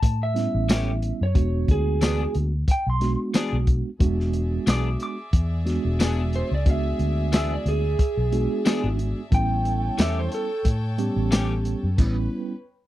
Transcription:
0.00 0.46 A2 medium
0.00 0.21 A5 medium
0.00 kick medium
0.00 closed hi-hat medium
0.23 1.19 E5 medium
0.34 1.22 G3 medium
0.34 1.23 B3 medium
0.34 1.23 C#4 medium
0.34 1.23 E4 medium
0.34 snare soft
0.34 closed hi-hat medium
0.55 1.11 A1 medium
0.69 0.90 E3 medium
0.69 0.90 A3 medium
0.69 0.91 C#4 medium
0.69 0.91 G4 medium
0.69 snare loud
0.69 closed hi-hat medium
0.69 tambourine loud
1.02 closed hi-hat medium
1.21 1.33 F#2 medium
1.21 1.68 C#5 medium
1.35 1.64 E1 loud
1.35 2.51 G#3 medium
1.35 2.51 B3 medium
1.35 2.52 D4 medium
1.35 2.52 F#4 medium
1.35 kick medium
1.35 closed hi-hat medium
1.68 2.25 D2 medium
1.68 2.34 G#4 medium
1.68 kick medium
1.68 closed hi-hat medium
2.01 2.23 E3 medium
2.01 2.23 B3 medium
2.01 2.23 D4 medium
2.01 2.24 G#4 medium
2.01 snare loud
2.01 closed hi-hat medium
2.01 tambourine loud
2.34 2.63 D2 medium
2.34 closed hi-hat medium
2.68 2.87 G5 medium
2.68 kick medium
2.68 closed hi-hat medium
2.87 3.15 B1 medium
2.87 3.20 C6 medium
3.01 3.88 G#3 medium
3.01 3.88 B3 medium
3.01 3.89 D4 medium
3.01 3.89 F#4 medium
3.01 snare soft
3.01 closed hi-hat medium
3.34 3.55 E3 medium
3.34 3.56 B3 medium
3.34 3.56 D4 loud
3.34 3.56 G#4 loud
3.34 snare loud
3.34 closed hi-hat medium
3.34 tambourine loud
3.53 3.81 B1 medium
3.67 kick medium
3.67 closed hi-hat medium
3.99 4.57 E1 medium
3.99 5.16 G#3 medium
3.99 5.17 B3 medium
3.99 5.17 D4 medium
3.99 5.17 F#4 medium
3.99 9.29 G#4 medium
3.99 9.29 D5 medium
3.99 9.29 E5 medium
3.99 kick medium
3.99 closed hi-hat medium
4.20 snare soft
4.33 closed hi-hat medium
4.67 4.95 B1 medium
4.67 4.88 E3 medium
4.67 4.88 B3 medium
4.67 4.89 D4 medium
4.67 4.89 G#4 medium
4.67 5.01 D6 medium
4.67 snare loud
4.67 closed hi-hat medium
4.67 tambourine loud
5.00 5.66 D6 medium
5.00 closed hi-hat medium
5.33 5.77 E2 medium
5.33 kick medium
5.33 closed hi-hat medium
5.65 6.53 G#3 medium
5.65 6.54 B3 medium
5.65 6.54 D4 medium
5.65 6.54 F#4 medium
5.65 snare soft
5.65 closed hi-hat medium
5.85 6.41 E1 medium
6.00 6.21 E3 medium
6.00 6.21 B3 medium
6.00 6.22 D4 medium
6.00 6.22 G#4 loud
6.00 snare loud
6.00 closed hi-hat medium
6.00 tambourine loud
6.33 6.52 C5 medium
6.33 closed hi-hat medium
6.51 6.92 C#2 medium
6.51 6.70 D5 medium
6.66 7.82 G#3 medium
6.66 7.83 B3 medium
6.66 7.83 D4 medium
6.66 7.83 F#4 medium
6.66 kick loud
6.66 closed hi-hat medium
6.70 7.33 E5 medium
6.99 7.56 D2 medium
6.99 closed hi-hat medium
7.32 7.54 E3 medium
7.32 7.54 B3 medium
7.32 7.54 D4 medium
7.32 7.55 G#4 medium
7.32 7.52 E5 medium
7.32 snare loud
7.32 closed hi-hat medium
7.32 tambourine loud
7.54 7.67 D5 medium
7.66 7.94 D2 medium
7.66 8.96 G#4 medium
7.66 closed hi-hat medium
7.99 kick medium
7.99 closed hi-hat medium
8.17 8.46 B1 medium
8.32 9.20 G#3 medium
8.32 9.20 B3 medium
8.32 9.20 D4 medium
8.32 9.20 F#4 medium
8.32 closed hi-hat medium
8.65 8.87 E3 medium
8.65 8.87 B3 medium
8.65 8.87 D4 medium
8.65 8.88 G#4 loud
8.65 snare loud
8.65 closed hi-hat medium
8.65 tambourine loud
8.84 9.12 G#1 medium
8.99 closed hi-hat medium
9.31 9.89 A1 medium
9.31 10.48 G3 medium
9.31 10.48 B3 medium
9.31 10.48 C#4 medium
9.31 10.49 E4 medium
9.31 11.97 A4 medium
9.31 12.51 C#5 medium
9.31 12.51 G5 medium
9.31 9.98 G5 loud
9.31 kick loud
9.31 closed hi-hat medium
9.65 closed hi-hat medium
9.98 10.27 E2 medium
9.98 10.20 E3 medium
9.98 10.20 A3 medium
9.98 10.20 C#4 medium
9.98 10.21 G4 medium
9.98 10.18 E5 medium
9.98 snare loud
9.98 closed hi-hat medium
9.98 tambourine loud
10.19 10.33 C5 medium
10.32 10.66 A4 loud
10.32 closed hi-hat medium
10.65 11.09 A2 medium
10.65 kick medium
10.65 closed hi-hat medium
10.98 11.86 G3 medium
10.98 11.86 B3 medium
10.98 11.86 C#4 medium
10.98 11.86 G4 medium
10.98 closed hi-hat medium
11.16 11.74 A1 medium
11.31 11.53 E3 medium
11.31 11.53 A3 medium
11.31 11.53 C#4 medium
11.31 11.54 G4 loud
11.31 snare loud
11.31 closed hi-hat medium
11.31 tambourine loud
11.65 closed hi-hat medium
11.83 11.96 F#2 medium
11.98 12.27 A1 loud
11.98 12.53 G3 medium
11.98 12.53 B3 medium
11.98 12.53 C#4 medium
11.98 12.53 E4 medium
11.98 12.53 B4 medium
11.98 kick loud
11.98 closed hi-hat medium
11.98 crash medium

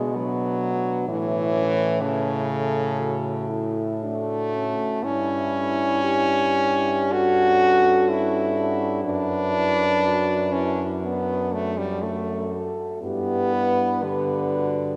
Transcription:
0.00 1.07 B2 medium
0.00 0.17 G#3 medium
0.00 0.14 D4 medium
0.00 0.17 G#4 medium
0.14 1.08 F#3 loud
0.14 1.08 D4 medium
0.14 1.07 B4 medium
1.07 4.73 A2 medium
1.07 2.03 E3 loud
1.07 1.56 E4 medium
1.07 2.02 C#5 medium
1.54 2.69 C#4 medium
2.00 3.75 C#3 loud
2.00 2.46 A4 medium
2.47 3.72 A4 medium
2.97 3.51 F#4 medium
3.50 4.06 E4 medium
4.04 5.05 A3 loud
4.04 4.57 D4 medium
4.04 5.05 F#4 medium
4.56 5.05 C#4 medium
5.03 9.05 G2 medium
5.03 7.14 C#4 loud
5.03 6.05 E4 medium
5.03 6.03 E4 medium
6.04 6.57 E4 medium
6.04 7.14 G4 medium
6.58 7.13 E4 medium
7.12 9.04 C#4 medium
7.12 8.12 F#4 loud
7.12 9.04 A4 medium
8.10 9.04 E4 loud
9.04 12.75 F#2 medium
9.04 10.54 D4 loud
9.04 9.55 D4 medium
9.04 11.72 B4 medium
9.53 9.85 E4 medium
10.02 10.54 F#4 medium
10.53 10.86 C#4 loud
10.53 11.07 E4 medium
11.04 11.55 B3 medium
11.04 12.05 D4 medium
11.54 11.79 A3 medium
11.78 12.05 G3 medium
12.03 12.53 A3 medium
12.03 13.02 F#4 medium
12.03 12.99 A4 medium
13.02 14.96 G2 medium
13.02 14.05 B3 loud
13.02 14.04 E4 medium
13.02 13.54 G4 medium
13.53 14.96 B4 medium
14.03 14.96 D3 medium
14.03 14.55 G4 medium
14.54 14.96 F#4 medium

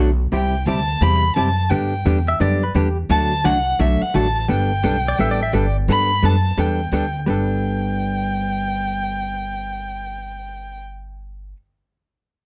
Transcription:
0.00 0.31 B1 medium
0.32 0.66 C2 medium
0.32 0.54 C3 medium
0.32 0.54 G3 medium
0.32 0.55 C4 medium
0.32 0.55 E4 medium
0.32 0.55 G4 medium
0.32 0.65 G5 medium
0.66 1.01 D2 medium
0.66 0.79 C3 medium
0.66 0.79 G3 medium
0.66 0.79 C4 medium
0.66 0.79 E4 medium
0.66 0.79 G4 medium
0.66 1.04 A5 loud
1.01 1.35 E2 loud
1.01 1.24 C3 medium
1.01 1.24 G3 medium
1.01 1.24 C4 medium
1.01 1.24 E4 medium
1.01 1.24 G4 medium
1.01 1.35 B5 loud
1.35 1.70 F#2 medium
1.35 1.48 C3 medium
1.35 1.48 G3 medium
1.35 1.48 C4 medium
1.35 1.48 E4 medium
1.35 1.49 G4 medium
1.35 1.71 A5 loud
1.70 2.05 G2 medium
1.70 1.93 D3 medium
1.70 1.93 G3 medium
1.70 1.93 B3 medium
1.70 1.93 D4 medium
1.70 1.93 G4 medium
1.70 2.28 G5 medium
2.05 2.39 E2 medium
2.05 2.17 D3 medium
2.05 2.18 G3 medium
2.05 2.18 B3 medium
2.05 2.18 D4 medium
2.05 2.18 G4 medium
2.28 2.41 E5 medium
2.40 2.74 F#2 medium
2.40 2.62 D3 medium
2.40 2.63 G3 medium
2.40 2.63 B3 medium
2.40 2.63 D4 medium
2.40 2.63 G4 medium
2.40 2.63 D5 medium
2.63 2.76 B4 medium
2.75 3.09 E2 medium
2.75 2.87 D3 medium
2.75 2.87 G3 medium
2.75 2.87 B3 medium
2.75 2.87 D4 medium
2.75 2.97 G4 medium
2.75 2.87 G4 medium
3.09 3.44 D2 medium
3.09 3.32 D3 medium
3.09 3.32 F#3 medium
3.09 3.32 A3 medium
3.09 3.32 D4 medium
3.09 3.32 F#4 medium
3.09 3.46 A5 loud
3.44 3.79 C2 medium
3.44 3.56 D3 medium
3.44 3.57 F#3 medium
3.44 3.57 A3 medium
3.44 3.57 D4 medium
3.44 3.57 F#4 medium
3.44 3.82 F#5 loud
3.79 4.00 B1 loud
3.79 4.01 D3 medium
3.79 4.02 F#3 medium
3.79 4.02 A3 medium
3.79 4.02 D4 medium
3.79 4.02 F#4 medium
3.79 4.03 E5 medium
4.02 4.16 F#5 loud
4.02 muted upright bass stroke soft
4.14 4.48 A1 medium
4.14 4.26 D3 medium
4.14 4.26 F#3 medium
4.14 4.26 A3 medium
4.14 4.27 D4 medium
4.14 4.27 F#4 medium
4.14 4.49 A5 loud
4.49 4.83 G1 medium
4.49 4.71 G3 medium
4.49 4.71 B3 medium
4.49 4.71 D4 medium
4.49 4.72 A4 medium
4.49 5.72 G5 loud
4.84 5.18 B1 medium
4.84 4.95 G3 medium
4.84 4.96 B3 medium
4.84 4.96 D4 medium
4.84 4.96 A4 medium
5.08 5.19 D5 medium
5.19 5.52 A1 medium
5.19 5.41 G3 medium
5.19 5.41 B3 medium
5.19 5.41 D4 medium
5.19 5.41 A4 medium
5.19 5.31 E5 medium
5.31 5.42 D5 medium
5.43 5.54 E5 medium
5.53 5.87 G1 medium
5.53 5.65 G3 medium
5.53 5.65 B3 medium
5.53 5.66 D4 medium
5.53 5.66 A4 medium
5.53 5.76 D5 medium
5.88 6.22 G2 medium
5.88 6.10 G3 soft
5.88 6.11 B3 medium
5.88 6.11 D4 medium
5.88 6.11 A4 medium
5.88 6.26 B5 loud
6.23 6.57 F#2 medium
6.23 6.35 G3 medium
6.23 6.35 B3 medium
6.23 6.35 D4 medium
6.23 6.35 A4 medium
6.23 6.61 A5 loud
6.57 6.91 E2 medium
6.57 6.80 G3 medium
6.57 6.80 B3 medium
6.57 6.80 D4 medium
6.57 6.80 A4 medium
6.57 6.93 G5 medium
6.92 7.26 D2 medium
6.92 7.04 G3 medium
6.92 7.04 B3 medium
6.92 7.05 D4 medium
6.92 7.05 A4 medium
6.92 7.20 G5 medium
7.26 11.52 G1 medium
7.26 11.55 G3 medium
7.26 11.56 B3 medium
7.26 11.57 D4 medium
7.26 11.57 A4 medium
7.26 10.82 G5 medium

